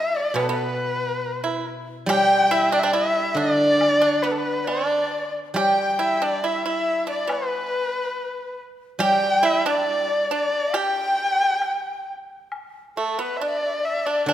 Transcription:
0.00 1.21 G3 medium
0.00 0.31 D4 medium
0.00 0.16 E5 medium
0.00 0.18 E5 medium
0.14 0.37 D5 medium
0.14 0.41 D5 medium
0.34 2.94 B2 medium
0.34 0.48 B3 medium
0.34 0.49 B4 medium
0.34 high woodblock medium
0.39 0.53 A4 medium
0.39 0.43 B4 medium
0.49 1.40 B3 medium
0.49 1.62 B4 medium
0.49 1.67 B4 medium
1.44 1.64 E4 medium
2.06 4.66 G3 medium
2.06 2.49 G4 loud
2.06 2.53 G5 loud
2.06 2.88 G5 loud
2.06 high woodblock medium
2.51 2.71 E4 medium
2.51 2.74 E5 medium
2.72 2.82 D4 medium
2.72 2.80 D5 loud
2.79 2.85 E5 medium
2.83 2.93 D4 medium
2.83 2.96 D5 medium
2.88 2.95 G5 medium
2.93 3.34 E4 medium
2.93 3.37 E5 medium
2.93 3.38 E5 medium
3.35 5.99 D3 medium
3.35 3.97 D4 medium
3.35 4.24 D5 medium
3.35 4.24 D5 loud
3.81 high woodblock medium
4.02 4.22 D4 medium
4.22 4.64 B3 medium
4.22 4.33 B4 medium
4.22 4.37 B4 medium
4.31 4.39 A4 medium
4.38 4.69 B4 medium
4.38 4.67 B4 medium
4.65 5.30 D4 medium
4.65 5.33 D5 medium
4.65 5.35 D5 medium
4.65 high woodblock soft
4.65 low woodblock soft
5.54 8.13 G3 medium
5.54 5.98 G4 medium
5.54 6.40 G5 medium
5.54 5.98 G5 medium
5.54 high woodblock medium
5.99 6.20 E4 medium
5.99 6.25 E5 medium
6.22 6.42 D4 medium
6.22 6.47 D5 medium
6.44 6.64 E4 medium
6.44 6.64 E5 medium
6.44 6.66 E5 medium
6.66 7.05 E4 medium
6.66 7.05 E5 medium
6.66 7.07 E5 medium
7.07 7.27 D4 medium
7.07 7.31 D5 medium
7.07 7.33 D5 medium
7.27 8.53 B3 medium
7.27 8.58 B4 medium
7.27 high woodblock medium
7.32 8.59 B4 medium
8.99 11.61 G3 medium
8.99 9.40 G4 medium
8.99 9.61 G5 loud
8.99 9.46 G5 loud
8.99 high woodblock medium
9.43 9.63 E4 medium
9.43 9.69 E5 loud
9.66 10.26 D4 medium
9.66 10.76 D5 medium
9.66 10.31 D5 medium
10.31 10.71 D4 medium
10.31 10.78 D5 medium
10.74 12.03 G4 medium
10.74 12.07 G5 medium
10.74 12.08 G5 loud
10.74 high woodblock medium
11.62 high woodblock soft
12.52 high woodblock medium
12.96 13.17 A3 medium
12.96 13.19 A4 medium
12.96 13.22 A4 medium
13.18 13.39 B3 medium
13.18 13.41 B4 medium
13.18 13.38 B4 medium
13.37 13.50 D5 medium
13.37 13.44 E5 medium
13.41 14.03 D4 medium
13.41 13.86 D5 medium
13.48 13.59 E5 medium
13.58 13.67 D5 medium
13.66 13.75 E5 medium
13.74 13.84 D5 medium
13.83 13.91 E5 medium
13.83 14.07 E5 medium
13.89 14.06 D5 medium
14.05 14.26 D4 medium
14.05 14.26 D5 medium
14.05 14.28 D5 medium
14.26 14.33 D3 medium
14.26 14.33 D4 medium
14.26 14.33 D5 medium
14.26 high woodblock soft

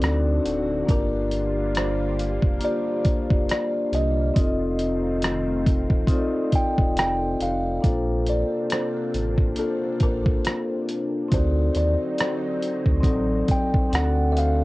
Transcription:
0.00 0.40 D2 loud
0.00 4.32 D3 medium
0.00 0.87 A3 medium
0.00 0.76 C4 medium
0.00 0.84 C4 medium
0.00 0.77 D4 medium
0.00 0.08 D#4 medium
0.00 0.87 F#4 medium
0.00 0.79 A4 medium
0.00 cross-stick loud
0.00 closed hi-hat medium
0.04 0.81 F#4 medium
0.04 0.79 D5 medium
0.45 0.83 D1 medium
0.45 closed hi-hat medium
0.85 2.39 G1 loud
0.85 4.32 G3 medium
0.85 2.40 A#3 medium
0.85 4.32 A#3 medium
0.85 2.41 D4 medium
0.85 4.32 F4 medium
0.85 2.41 F4 medium
0.85 kick loud
0.85 closed hi-hat medium
0.90 2.42 G4 medium
0.90 1.79 A#4 medium
0.90 2.43 D5 medium
1.31 closed hi-hat medium
1.75 2.66 C5 medium
1.75 cross-stick loud
1.75 closed hi-hat medium
2.19 closed hi-hat medium
2.42 2.60 F1 medium
2.42 kick medium
2.59 4.14 A#3 medium
2.59 4.14 D4 medium
2.59 4.15 F4 medium
2.59 closed hi-hat medium
2.64 4.16 G4 medium
2.64 2.71 C5 medium
2.64 3.50 D5 loud
2.72 4.20 D5 medium
3.05 kick medium
3.05 closed hi-hat medium
3.30 3.47 F1 medium
3.30 kick loud
3.49 3.95 D5 medium
3.49 cross-stick loud
3.49 closed hi-hat medium
3.92 4.31 C2 medium
3.92 6.94 D#5 medium
3.92 closed hi-hat medium
4.34 5.86 F1 loud
4.34 7.80 D#3 medium
4.34 7.80 A3 medium
4.34 5.88 C4 medium
4.34 7.80 C4 medium
4.34 5.89 D#4 medium
4.34 7.80 F4 medium
4.34 5.89 F4 medium
4.34 kick loud
4.34 closed hi-hat medium
4.38 5.90 A4 medium
4.38 5.91 D#5 medium
4.79 closed hi-hat medium
5.22 cross-stick loud
5.22 closed hi-hat medium
5.66 kick loud
5.66 closed hi-hat medium
5.90 6.08 D#1 medium
5.90 kick medium
6.07 7.61 C4 medium
6.07 7.62 D#4 medium
6.07 7.63 F4 medium
6.07 kick medium
6.07 closed hi-hat medium
6.11 7.64 A4 medium
6.11 6.18 D5 medium
6.19 7.68 D#5 medium
6.52 6.97 G5 medium
6.52 kick medium
6.52 closed hi-hat medium
6.78 6.98 D#1 medium
6.78 kick medium
6.96 7.35 F1 medium
6.96 7.38 G5 loud
6.96 cross-stick loud
6.96 closed hi-hat medium
7.40 7.79 F1 medium
7.40 8.31 F5 medium
7.40 closed hi-hat medium
7.81 8.44 A#1 loud
7.81 11.28 C3 medium
7.81 9.35 A#3 medium
7.81 11.28 A#3 medium
7.81 11.28 C4 medium
7.81 9.36 D4 medium
7.81 11.28 D4 medium
7.81 9.37 F4 medium
7.81 kick loud
7.81 closed hi-hat medium
7.85 9.38 A4 medium
7.85 9.38 C5 medium
8.27 8.73 D5 medium
8.27 closed hi-hat medium
8.70 9.61 C5 medium
8.70 cross-stick medium
8.70 closed hi-hat medium
9.14 9.53 A1 medium
9.14 closed hi-hat medium
9.38 kick medium
9.55 11.09 A#3 medium
9.55 11.10 D4 medium
9.55 11.11 F4 medium
9.55 10.03 A4 medium
9.55 closed hi-hat medium
9.61 11.12 C5 medium
10.00 10.39 A1 medium
10.00 11.36 A#4 medium
10.00 kick medium
10.00 closed hi-hat medium
10.26 kick loud
10.45 cross-stick loud
10.45 closed hi-hat medium
10.89 closed hi-hat medium
11.28 11.70 D2 loud
11.28 14.64 D3 medium
11.28 13.90 F#3 medium
11.28 12.83 C4 medium
11.28 14.64 C4 medium
11.28 12.84 D#4 medium
11.28 13.90 D#4 medium
11.28 12.84 F#4 medium
11.28 kick loud
11.28 closed hi-hat medium
11.33 12.85 A4 medium
11.33 11.77 C5 medium
11.33 12.86 D5 medium
11.75 11.96 D#2 medium
11.75 12.21 D5 medium
11.75 closed hi-hat medium
12.18 13.46 C5 medium
12.18 cross-stick loud
12.18 closed hi-hat medium
12.62 closed hi-hat medium
12.86 13.05 D2 medium
12.86 kick medium
13.01 13.43 A1 loud
13.01 13.91 F#3 medium
13.01 13.89 C4 medium
13.01 13.91 D#4 medium
13.01 kick medium
13.01 closed hi-hat medium
13.05 13.92 A4 medium
13.05 13.93 D5 medium
13.48 13.95 G5 medium
13.48 kick medium
13.48 closed hi-hat medium
13.74 kick loud
13.90 14.64 D2 loud
13.90 14.64 A3 medium
13.90 14.64 C4 medium
13.90 14.64 D4 medium
13.90 14.00 D#4 medium
13.90 14.64 F#4 medium
13.90 closed hi-hat medium
13.94 14.64 A4 medium
13.94 14.64 D5 medium
13.94 14.32 F#5 loud
13.94 cross-stick loud
13.99 14.64 F#4 medium
14.32 14.37 E5 medium
14.37 14.64 F5 loud
14.37 closed hi-hat medium

